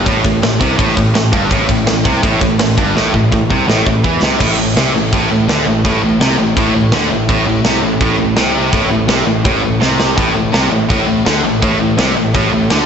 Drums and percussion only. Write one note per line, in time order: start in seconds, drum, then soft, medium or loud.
0.06 kick loud
0.06 ride loud
0.25 kick loud
0.25 ride medium
0.43 snare loud
0.43 ride medium
0.61 kick loud
0.61 ride medium
0.79 kick loud
0.79 ride loud
0.97 kick medium
0.97 ride medium
1.15 snare loud
1.15 ride loud
1.33 kick loud
1.33 ride medium
1.51 kick loud
1.51 ride loud
1.69 kick medium
1.69 ride medium
1.87 snare loud
1.87 ride loud
2.05 kick loud
2.05 ride medium
2.23 kick loud
2.23 ride loud
2.41 kick loud
2.41 ride medium
2.59 snare loud
2.59 ride medium
2.78 kick loud
2.78 ride medium
2.97 snare medium
3.14 kick medium
3.32 kick medium
3.50 kick medium
3.70 snare loud
3.87 kick medium
4.04 kick medium
4.23 snare medium
4.40 kick loud
4.40 crash loud
4.40 crash medium
4.77 snare loud
4.77 crash medium
5.13 kick loud
5.13 crash medium
5.49 snare loud
5.49 crash medium
5.85 kick loud
5.85 crash medium
6.21 snare loud
6.21 crash medium
6.57 kick loud
6.57 crash medium
6.92 snare loud
6.92 crash medium
7.29 kick loud
7.29 crash medium
7.65 snare loud
7.65 crash medium
8.01 kick loud
8.01 crash medium
8.37 snare loud
8.37 crash medium
8.73 kick loud
8.73 crash medium
9.09 snare loud
9.09 crash medium
9.45 kick loud
9.45 crash medium
9.82 snare medium
10.00 snare medium
10.18 kick loud
10.18 crash medium
10.54 snare loud
10.54 crash medium
10.90 kick loud
10.90 crash medium
11.26 snare loud
11.26 crash medium
11.62 kick loud
11.62 crash medium
11.99 snare loud
11.99 crash medium
12.35 kick loud
12.35 crash medium
12.70 snare loud
12.70 crash medium